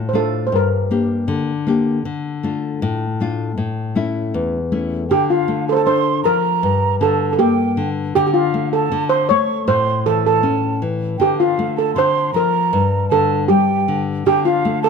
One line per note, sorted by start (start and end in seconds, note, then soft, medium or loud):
0.00 0.50 A2 medium
0.09 0.16 C5 medium
0.13 0.45 A3 soft
0.13 0.45 D4 soft
0.13 0.45 F4 soft
0.13 0.47 A4 medium
0.47 0.54 C5 medium
0.52 1.27 G2 medium
0.52 1.65 A#4 medium
0.91 1.52 A#3 soft
0.91 1.52 D4 soft
0.91 1.52 G4 soft
1.28 2.03 D3 medium
1.67 1.98 A#3 soft
1.67 1.98 D4 soft
1.67 1.98 G4 soft
2.05 2.79 D3 medium
2.43 3.05 A3 soft
2.43 3.05 D4 soft
2.43 3.05 F4 soft
2.82 3.56 A2 medium
3.20 3.51 A3 soft
3.20 3.51 D4 soft
3.20 3.51 F4 soft
3.58 4.32 A2 medium
3.95 4.57 A3 soft
3.95 4.57 C#4 soft
3.95 4.57 E4 medium
4.34 5.08 E2 medium
4.72 5.03 A3 soft
4.72 5.03 C#4 soft
4.72 5.03 E4 soft
5.10 6.25 D3 medium
5.10 5.31 G4 medium
5.10 5.28 G5 medium
5.29 5.65 F4 medium
5.29 5.65 F5 medium
5.48 5.85 A3 medium
5.68 5.73 A4 medium
5.68 5.71 A5 medium
5.68 5.76 C6 medium
5.73 5.77 C5 medium
5.73 5.84 A5 medium
5.77 5.86 A4 medium
5.85 6.23 D4 medium
5.85 6.22 C5 medium
5.85 6.21 C6 medium
6.23 6.62 F3 medium
6.23 7.03 A#4 medium
6.23 6.96 A#5 medium
6.63 8.11 G2 medium
7.00 7.38 D3 medium
7.00 7.32 A4 medium
7.00 7.29 A5 medium
7.30 7.39 A4 medium
7.30 7.37 A5 medium
7.38 7.76 A#3 medium
7.38 7.92 G4 medium
7.38 7.91 G5 medium
7.77 8.14 D3 medium
8.15 8.90 D3 medium
8.15 8.21 G4 medium
8.15 8.21 G5 medium
8.26 8.34 G4 medium
8.26 8.33 G5 medium
8.34 8.73 F4 medium
8.34 8.69 F5 medium
8.54 8.90 A3 medium
8.73 9.08 A4 medium
8.73 9.08 A5 medium
8.92 9.28 D3 medium
9.09 9.29 C5 medium
9.09 9.28 C6 medium
9.29 9.67 A3 medium
9.29 9.64 C#5 loud
9.29 9.66 C#6 medium
9.68 11.16 A2 medium
9.68 10.07 C5 loud
9.68 10.04 C6 medium
10.06 10.43 E3 medium
10.06 10.23 A4 medium
10.06 10.24 A5 medium
10.26 10.79 A4 medium
10.26 10.78 A5 medium
10.43 10.80 C#4 medium
10.82 11.19 E3 medium
11.18 11.95 D3 medium
11.18 11.38 G4 medium
11.18 11.37 G5 medium
11.39 11.75 F4 medium
11.39 11.74 F5 medium
11.59 11.95 A3 medium
11.76 11.96 A4 medium
11.76 11.94 A5 medium
11.95 12.33 D3 medium
11.95 12.33 C5 medium
11.95 12.31 C6 medium
12.33 12.71 F3 soft
12.33 13.08 A#4 medium
12.33 13.06 A#5 medium
12.73 14.21 G2 medium
13.09 13.48 D3 medium
13.09 13.51 A4 medium
13.09 13.45 A5 medium
13.48 13.86 G3 medium
13.48 14.02 G4 medium
13.48 14.02 G5 medium
13.88 14.25 D3 medium
14.26 14.89 D3 medium
14.26 14.44 G4 medium
14.26 14.43 G5 medium
14.44 14.80 F4 medium
14.44 14.80 F5 medium
14.65 14.89 A3 medium
14.82 14.89 A4 medium
14.82 14.89 A5 medium